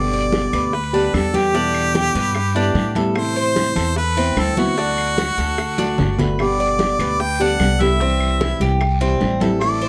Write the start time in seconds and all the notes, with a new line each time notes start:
Already playing: G1 B2 D3 G3 B3 G4 D5
0.13 D5, high conga
0.32 high bongo, high conga, short guiro
0.53 D2 B4, high bongo, high conga, short guiro, claves
0.73 B4, muted nylon-string guitar stroke, high bongo, high conga, long guiro
0.93 D3 G3 B3 D4 G4, high bongo, high conga
1.14 E2 D3 G3 B3 G4 A4, high bongo, low bongo, high conga, short guiro, claves
1.33 D3 G3 B3 G4, high bongo, high conga, short guiro
1.53 B2 D3 G3 B3 D4 E4, high bongo, high conga, long guiro
1.74 high conga, claves
1.94 G4, high bongo, high conga, short guiro
2.15 G2 B4, high bongo, high conga, short guiro
2.35 muted nylon-string guitar stroke, high bongo, high conga, long guiro, claves
2.55 D3 G3 B3 D4 E4, high bongo, high conga
2.75 A2 D3 G3 B3 E4, high bongo, low bongo, high conga, short guiro
2.95 D3 G3 B3 E4 A4, high bongo, high conga, short guiro
3.15 C3 E3 C4 E4 C5, high bongo, high conga, long guiro, claves
3.36 C5, high conga
3.56 high bongo, high conga, short guiro
3.76 E2 A4, high bongo, high conga, short guiro, claves
3.96 B4, muted nylon-string guitar stroke, high bongo, high conga, long guiro
4.17 E3 B3 C4 E4, high bongo, high conga
4.36 D2 E3 B3 E4 A4, high bongo, low bongo, high conga, short guiro, claves
4.57 E3 B3 C4 E4 F#4, high bongo, high conga, short guiro
4.77 D3 A3 D4 F#4, high bongo, high conga, long guiro
4.98 high conga, claves
5.18 F#4, high bongo, high conga, short guiro
5.38 D2 A4, high bongo, high conga, short guiro
5.58 muted nylon-string guitar stroke, high bongo, high conga, long guiro, claves
5.78 A3 D4 F#4, high bongo, high conga
5.98 G1 D3 A3 D4 F#4, high bongo, low bongo, low conga, short guiro
6.18 A3 D4 F#4 B4, high bongo, low conga, short guiro
6.38 B2 D3 G3 B3 G4 D5, high bongo, high conga, long guiro, claves
6.59 D5, high conga
6.79 high bongo, high conga, short guiro
6.99 D2 B4, high bongo, high conga, short guiro, claves
7.19 G5, muted nylon-string guitar stroke, high bongo, high conga, long guiro
7.39 D3 G3 B3 D4 G4 F#5, high bongo, high conga
7.60 C2 D3 G3 B3 G4, high bongo, low bongo, high conga, short guiro, claves
7.80 D3 G3 B3 E4 G4 E5, high bongo, high conga, short guiro
8.00 C3 E3 G3 C4 E4, high bongo, long guiro
8.21 high conga, claves
8.40 E4, high bongo, high conga, short guiro
8.60 C2 G4, high bongo, high conga, short guiro
8.80 muted nylon-string guitar stroke, high bongo, high conga, long guiro, claves
9.01 E3 G3 C4 E4, high bongo, high conga
9.20 A1 E3 G3 C4 E4, high bongo, low bongo, high conga, short guiro
9.40 E3 G3 C4 E4 A4, high bongo, high conga, short guiro
9.61 E3 A3 C4 D5, high bongo, high conga, long guiro, claves
9.65 E4
9.81 C5, high conga